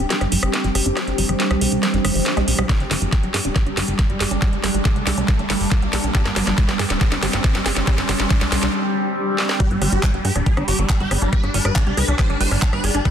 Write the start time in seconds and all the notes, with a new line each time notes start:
Already playing: G3 C4 D4 G4 G5, riser
0.10 G3, snare, closed hi-hat
0.21 G1 D4, cross-stick, closed hi-hat
0.32 G1 G3, open hi-hat
0.43 G1, cross-stick, closed hi-hat
0.54 snare, closed hi-hat
0.64 G1 G3, closed hi-hat
0.75 G1 G#4, cross-stick, open hi-hat
0.86 G1 D4, closed hi-hat
0.97 G3, cross-stick, snare, closed hi-hat
1.07 G1, closed hi-hat
1.18 G1 G3, open hi-hat
1.29 G1 G3, cross-stick, closed hi-hat
1.40 G#3, snare, closed hi-hat
1.51 C2 G3, cross-stick, closed hi-hat
1.61 C2 G#4, open hi-hat
1.72 C2 D4, closed hi-hat
1.83 G3, cross-stick, snare, closed hi-hat
1.94 G1 D4, closed hi-hat
2.05 G1 G#3, cross-stick, open hi-hat
2.15 G1 F#3, open hi-hat
2.26 snare, closed hi-hat
2.37 B1 G#3, cross-stick, closed hi-hat
2.48 B1 D4, open hi-hat
2.59 B1 G3, cross-stick, closed hi-hat
2.69 G3 D4, kick, snare, closed hi-hat
2.80 G1, closed hi-hat
2.91 G1 G3, snare, open hi-hat
3.02 G1 G3
3.13 G#3, kick, snare, closed hi-hat
3.23 G1 G3, closed hi-hat
3.34 G2 G#4, snare, open hi-hat
3.45 D1 D4, closed hi-hat
3.56 G3, kick, snare, closed hi-hat
3.66 G1 D4, closed hi-hat
3.77 G1 G3, snare, open hi-hat
3.88 G1, closed hi-hat
3.99 kick, snare, closed hi-hat
4.10 G1 G3, closed hi-hat
4.20 G1 G#4, snare, open hi-hat
4.31 G1 D4, closed hi-hat
4.42 G3, kick, snare, closed hi-hat
4.53 G1, closed hi-hat
4.64 G1 G3, snare, open hi-hat
4.74 G1 G3, closed hi-hat
4.85 G#3, kick, snare, closed hi-hat
4.96 C2 G3, closed hi-hat
5.07 C2 G#4, snare, open hi-hat
5.18 C2 D4, closed hi-hat
5.28 G3, kick, snare, closed hi-hat
5.39 G1 D4, closed hi-hat
5.50 G1 G3, snare, open hi-hat
5.61 G1, open hi-hat
5.72 kick, snare
5.82 B1 G3, closed hi-hat
5.93 B1 G#4, snare, open hi-hat
6.04 B1 D4, closed hi-hat
6.15 G3 C4, kick, snare, closed hi-hat
6.25 G1, snare, closed hi-hat
6.36 G1 G3, snare, open hi-hat
6.47 G1 G3, snare, closed hi-hat
6.58 G#3, kick, snare, closed hi-hat
6.69 G1 G3, snare, closed hi-hat
6.79 G2 G#4, snare, open hi-hat
6.90 D1 D4, snare, closed hi-hat
7.01 G3, kick, snare, closed hi-hat
7.12 G1 D4, snare, closed hi-hat
7.23 G1 G3, snare, open hi-hat
7.33 G1, snare, closed hi-hat
7.44 kick, snare, closed hi-hat
7.55 G1 G3, snare, closed hi-hat
7.66 G1 G#4, snare, open hi-hat
7.77 G1 D4, snare, closed hi-hat
7.87 G3, kick, snare, closed hi-hat
7.98 G1, snare, closed hi-hat
8.09 G1 G3, snare, open hi-hat
8.20 G1 G3, snare, closed hi-hat
8.30 G#3, kick, snare, closed hi-hat
8.41 C2 G3, snare, closed hi-hat
8.52 C2 G#4, snare, open hi-hat
8.63 C2 D4, snare, closed hi-hat
8.74 swell
9.38 snare
9.49 snare
9.60 G3 D4 G4, kick, closed hi-hat
9.71 G1 G3, closed hi-hat
9.82 G1 G3, cross-stick, open hi-hat
9.92 G1 G3 G4, closed hi-hat
10.03 G3 G#3, kick, cross-stick, clap, closed hi-hat
10.14 G1 G3, closed hi-hat
10.24 G2 G4 G#4 G5, open hi-hat
10.36 D1 G3 D4, cross-stick, closed hi-hat
10.46 G3 G#4, kick, closed hi-hat
10.57 G1 G3 D4, cross-stick, closed hi-hat
10.68 G1 G3 G4, open hi-hat
10.79 G1 G3, closed hi-hat
10.89 G3, kick, cross-stick, clap, closed hi-hat
11.00 G1 G3 G4, closed hi-hat
11.11 G1 G3 G#4, cross-stick, open hi-hat
11.22 G1 G3 D4, closed hi-hat
11.33 G3 B4, kick, closed hi-hat
11.43 G1 D4, cross-stick, closed hi-hat
11.54 G1 G3 D4, open hi-hat
11.65 G1 G3 B4, cross-stick, closed hi-hat
11.76 G#3 D4, kick, clap, closed hi-hat
11.87 C2 G3 D4, closed hi-hat
11.97 C2 G#4 B4, cross-stick, open hi-hat
12.08 C2 D4, closed hi-hat
12.19 G3 C5, kick, cross-stick, clap, closed hi-hat
12.30 G1 D4, closed hi-hat
12.41 G1 G3 C5, open hi-hat
12.51 G1 D4, cross-stick, open hi-hat
12.62 D4, kick, clap
12.73 G1 G3 B4, cross-stick, closed hi-hat
12.84 G1 D4 G#4, open hi-hat
12.95 G1 D4, closed hi-hat
13.05 G3 C5, kick, cross-stick, closed hi-hat